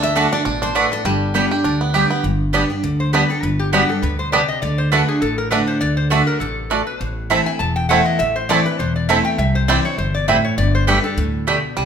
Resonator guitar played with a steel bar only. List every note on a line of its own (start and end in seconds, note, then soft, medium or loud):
0.03 0.31 E5 loud
0.33 0.60 D5 medium
0.62 0.75 C5 medium
0.76 0.91 B4 medium
0.92 1.04 A4 medium
1.05 1.90 G4 medium
3.00 3.13 C5 medium
3.14 3.30 B4 medium
3.30 3.43 A4 medium
3.43 3.59 B4 loud
3.59 3.72 G4 medium
3.73 3.89 F#4 medium
3.89 4.02 A4 medium
4.02 4.19 B4 medium
4.19 4.32 C5 medium
4.32 4.48 D5 medium
4.48 4.61 D#5 medium
4.62 4.78 D5 medium
4.78 4.91 C5 medium
4.92 5.08 B4 medium
5.08 5.21 G#4 medium
5.21 5.38 A4 medium
5.38 5.50 A#4 medium
5.51 5.67 B4 medium
5.67 5.80 C5 medium
5.81 5.96 D5 loud
5.97 6.10 C5 medium
6.10 6.27 B4 medium
6.27 6.40 A#4 medium
6.40 6.86 A4 medium
6.87 6.99 B4 medium
6.99 7.10 C5 medium
7.46 7.59 G#5 loud
7.59 7.75 A5 loud
7.76 7.89 G5 loud
7.89 8.06 F#5 loud
8.05 8.19 D#5 medium
8.19 8.35 E5 loud
8.36 8.49 C5 medium
8.49 8.65 D5 loud
8.66 8.79 B4 medium
8.79 8.95 C5 medium
8.96 9.08 D5 medium
9.09 9.25 E5 loud
9.25 9.38 G5 loud
9.38 9.55 E5 medium
9.55 9.68 C5 medium
9.68 9.85 D5 loud
9.85 9.98 C#5 medium
9.98 10.14 C5 medium
10.15 10.28 D5 loud
10.28 10.44 E5 loud
10.45 10.57 C#5 medium
10.58 10.74 D5 loud
10.75 10.87 C5 loud
10.87 11.04 B4 medium
11.04 11.44 A4 medium